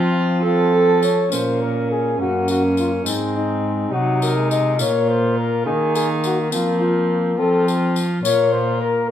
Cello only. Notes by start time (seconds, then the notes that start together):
Already playing: F3
1.32 A#2
2.19 F#2
3.06 G#2
3.93 C3
4.80 A#2
5.67 D#3
6.53 F3
7.39 F3
8.25 A#2